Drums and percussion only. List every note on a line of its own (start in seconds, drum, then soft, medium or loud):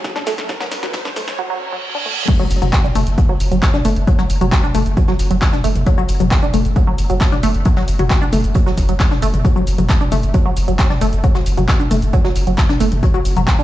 0.04 kick loud
0.04 snare loud
0.04 closed hi-hat medium
0.04 shaker soft
0.16 snare medium
0.16 mid tom loud
0.16 shaker soft
0.26 snare loud
0.26 closed hi-hat medium
0.26 open hi-hat loud
0.26 shaker medium
0.38 snare medium
0.38 closed hi-hat medium
0.38 shaker soft
0.49 kick loud
0.49 snare loud
0.49 closed hi-hat medium
0.49 shaker soft
0.61 snare medium
0.61 shaker soft
0.71 snare loud
0.71 closed hi-hat medium
0.71 open hi-hat loud
0.71 shaker medium
0.83 snare medium
0.83 closed hi-hat medium
0.83 mid tom medium
0.83 shaker soft
0.93 kick loud
0.93 snare loud
0.93 closed hi-hat medium
0.93 shaker soft
1.05 snare medium
1.05 mid tom medium
1.05 shaker soft
1.16 snare loud
1.16 open hi-hat loud
1.16 mid tom medium
1.16 shaker medium
1.28 snare loud
1.28 closed hi-hat medium
1.28 shaker soft
2.28 kick loud
2.28 closed hi-hat medium
2.28 crash loud
2.28 shaker soft
2.40 shaker soft
2.51 closed hi-hat medium
2.51 open hi-hat loud
2.51 shaker medium
2.62 closed hi-hat medium
2.62 mid tom medium
2.62 shaker soft
2.72 kick loud
2.72 snare loud
2.72 clap loud
2.72 closed hi-hat medium
2.72 shaker soft
2.84 mid tom medium
2.84 shaker soft
2.95 closed hi-hat medium
2.95 open hi-hat loud
2.95 mid tom medium
2.95 shaker medium
3.07 closed hi-hat medium
3.07 shaker soft
3.18 kick loud
3.18 closed hi-hat medium
3.18 shaker soft
3.40 closed hi-hat medium
3.40 open hi-hat loud
3.40 shaker medium
3.52 closed hi-hat medium
3.52 shaker soft
3.62 kick loud
3.62 snare loud
3.62 clap loud
3.62 closed hi-hat medium
3.62 shaker soft
3.74 snare soft
3.74 mid tom medium
3.74 shaker soft
3.85 closed hi-hat medium
3.85 open hi-hat loud
3.85 shaker medium
3.96 closed hi-hat medium
3.96 shaker soft
4.07 kick loud
4.07 closed hi-hat medium
4.07 shaker soft
4.18 snare medium
4.18 shaker soft
4.30 closed hi-hat medium
4.30 open hi-hat loud
4.30 shaker medium
4.41 closed hi-hat medium
4.41 mid tom medium
4.41 shaker soft
4.52 kick loud
4.52 snare loud
4.52 clap loud
4.52 closed hi-hat medium
4.52 closed hi-hat loud
4.52 shaker soft
4.64 mid tom medium
4.64 shaker soft
4.75 closed hi-hat medium
4.75 open hi-hat loud
4.75 mid tom medium
4.75 shaker medium
4.86 closed hi-hat medium
4.86 shaker soft
4.97 kick loud
4.97 closed hi-hat medium
4.97 shaker soft
5.08 snare soft
5.08 shaker soft
5.19 snare soft
5.19 closed hi-hat medium
5.19 open hi-hat loud
5.19 shaker medium
5.31 closed hi-hat medium
5.31 shaker soft
5.42 kick loud
5.42 snare loud
5.42 clap loud
5.42 closed hi-hat loud
5.42 open hi-hat medium
5.42 shaker soft
5.53 snare medium
5.53 mid tom loud
5.53 shaker soft
5.64 closed hi-hat medium
5.64 open hi-hat loud
5.64 shaker medium
5.75 closed hi-hat soft
5.75 closed hi-hat medium
5.75 mid tom medium
5.75 shaker soft
5.87 kick loud
5.87 closed hi-hat medium
5.87 shaker soft
5.98 shaker soft
6.08 closed hi-hat medium
6.08 open hi-hat loud
6.08 shaker medium
6.20 closed hi-hat medium
6.20 mid tom loud
6.20 shaker soft
6.31 kick loud
6.31 snare loud
6.31 clap loud
6.31 closed hi-hat medium
6.31 closed hi-hat loud
6.31 shaker soft
6.43 mid tom medium
6.43 shaker soft
6.53 closed hi-hat medium
6.53 open hi-hat loud
6.53 mid tom medium
6.53 shaker medium
6.65 closed hi-hat medium
6.65 shaker soft
6.76 kick loud
6.76 closed hi-hat medium
6.76 shaker soft
6.98 closed hi-hat medium
6.98 open hi-hat loud
6.98 shaker medium
7.10 closed hi-hat medium
7.10 shaker soft
7.21 kick loud
7.21 snare loud
7.21 clap loud
7.21 closed hi-hat medium
7.21 shaker soft
7.32 snare soft
7.32 mid tom loud
7.32 shaker soft
7.43 closed hi-hat medium
7.43 open hi-hat loud
7.43 shaker medium
7.54 closed hi-hat medium
7.54 shaker soft
7.65 kick loud
7.65 closed hi-hat medium
7.65 shaker soft
7.76 snare medium
7.76 shaker soft
7.88 closed hi-hat medium
7.88 open hi-hat loud
7.88 shaker medium
7.99 closed hi-hat medium
7.99 mid tom loud
7.99 shaker soft
8.10 kick loud
8.10 snare loud
8.10 clap loud
8.10 closed hi-hat medium
8.10 shaker soft
8.22 mid tom medium
8.22 shaker soft
8.32 closed hi-hat medium
8.32 open hi-hat loud
8.32 mid tom medium
8.32 shaker medium
8.44 closed hi-hat medium
8.44 shaker soft
8.54 kick loud
8.54 closed hi-hat medium
8.54 shaker soft
8.66 snare soft
8.66 shaker soft
8.78 kick medium
8.78 snare soft
8.78 closed hi-hat medium
8.78 open hi-hat loud
8.78 shaker medium
8.89 closed hi-hat medium
8.89 shaker soft
8.99 kick loud
8.99 snare loud
8.99 clap loud
8.99 closed hi-hat medium
8.99 open hi-hat medium
8.99 shaker soft
9.11 snare medium
9.11 mid tom loud
9.11 shaker soft
9.22 closed hi-hat medium
9.22 open hi-hat loud
9.22 shaker medium
9.33 closed hi-hat soft
9.33 closed hi-hat medium
9.33 mid tom medium
9.33 shaker soft
9.45 kick loud
9.45 closed hi-hat medium
9.45 shaker soft
9.56 shaker soft
9.67 closed hi-hat medium
9.67 open hi-hat loud
9.67 shaker medium
9.78 closed hi-hat medium
9.78 mid tom medium
9.78 shaker soft
9.89 kick loud
9.89 snare loud
9.89 clap loud
9.89 closed hi-hat medium
9.89 shaker soft
10.01 mid tom medium
10.01 shaker soft
10.12 closed hi-hat medium
10.12 open hi-hat loud
10.12 mid tom medium
10.12 shaker medium
10.23 closed hi-hat medium
10.23 shaker soft
10.34 kick loud
10.34 closed hi-hat loud
10.34 closed hi-hat medium
10.34 shaker soft
10.57 closed hi-hat medium
10.57 open hi-hat loud
10.57 shaker medium
10.68 closed hi-hat medium
10.68 shaker soft
10.78 kick loud
10.78 snare loud
10.78 clap loud
10.78 closed hi-hat medium
10.78 shaker soft
10.90 snare soft
10.90 mid tom loud
10.90 shaker soft
11.01 closed hi-hat medium
11.01 open hi-hat loud
11.01 shaker medium
11.13 closed hi-hat medium
11.13 shaker soft
11.24 kick loud
11.24 closed hi-hat medium
11.24 shaker soft
11.35 snare medium
11.35 shaker soft
11.46 closed hi-hat medium
11.46 open hi-hat loud
11.46 shaker medium
11.57 closed hi-hat medium
11.57 mid tom loud
11.57 shaker soft
11.68 kick loud
11.68 snare loud
11.68 clap loud
11.68 closed hi-hat loud
11.68 closed hi-hat medium
11.68 shaker soft
11.80 mid tom medium
11.80 shaker soft
11.91 closed hi-hat medium
11.91 open hi-hat loud
11.91 mid tom medium
11.91 shaker medium
12.02 closed hi-hat medium
12.02 shaker soft
12.13 kick loud
12.13 closed hi-hat medium
12.13 shaker soft
12.25 snare soft
12.25 shaker soft
12.35 snare soft
12.35 closed hi-hat medium
12.35 open hi-hat loud
12.35 shaker medium
12.47 closed hi-hat medium
12.47 shaker soft
12.58 kick loud
12.58 snare loud
12.58 clap loud
12.58 closed hi-hat medium
12.58 open hi-hat medium
12.58 shaker soft
12.69 snare medium
12.69 mid tom medium
12.69 shaker soft
12.80 closed hi-hat medium
12.80 open hi-hat loud
12.80 shaker medium
12.92 closed hi-hat medium
12.92 closed hi-hat soft
12.92 mid tom medium
12.92 shaker soft
13.03 kick loud
13.03 closed hi-hat medium
13.03 shaker soft
13.14 shaker soft
13.25 closed hi-hat medium
13.25 open hi-hat loud
13.25 shaker medium
13.37 closed hi-hat medium
13.37 mid tom medium
13.37 shaker soft
13.47 kick loud
13.47 snare loud
13.47 clap loud
13.47 closed hi-hat medium
13.47 shaker soft
13.59 mid tom medium
13.59 shaker soft